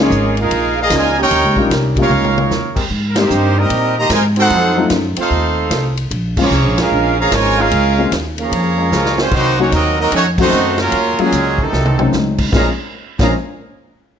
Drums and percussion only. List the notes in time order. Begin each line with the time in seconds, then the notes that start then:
0.11 hi-hat pedal
0.37 ride
0.50 kick, ride
0.90 kick, snare, hi-hat pedal, ride
1.30 kick, ride
1.56 kick
1.70 kick, snare, hi-hat pedal, ride
1.96 kick, ride
2.11 mid tom
2.24 mid tom
2.38 mid tom
2.51 snare, hi-hat pedal
2.76 kick, crash
2.90 kick
3.16 snare, ride
3.30 hi-hat pedal
3.70 kick, ride
4.10 kick, snare, hi-hat pedal, ride
4.36 ride
4.50 kick, ride
4.90 kick, snare, hi-hat pedal, ride
5.16 ride
5.31 kick
5.71 kick, snare, hi-hat pedal, ride
5.97 ride
6.11 kick, ride
6.37 kick, crash
6.51 hi-hat pedal
6.78 snare, ride
6.92 kick
7.31 kick, snare, hi-hat pedal, ride
7.71 kick, ride
8.12 kick, snare, hi-hat pedal, ride
8.38 ride
8.52 kick, ride
8.92 snare, hi-hat pedal
9.05 snare
9.18 snare
9.31 kick, crash
9.72 kick, hi-hat pedal, ride
10.12 kick, ride
10.38 kick, crash
10.52 hi-hat pedal
10.78 snare, ride
10.92 kick, ride
11.19 ride
11.32 kick, hi-hat pedal, ride
11.58 kick
11.73 snare
11.86 mid tom
11.99 mid tom
12.12 snare, hi-hat pedal
12.38 kick, crash
12.52 kick, snare
13.19 kick, snare, crash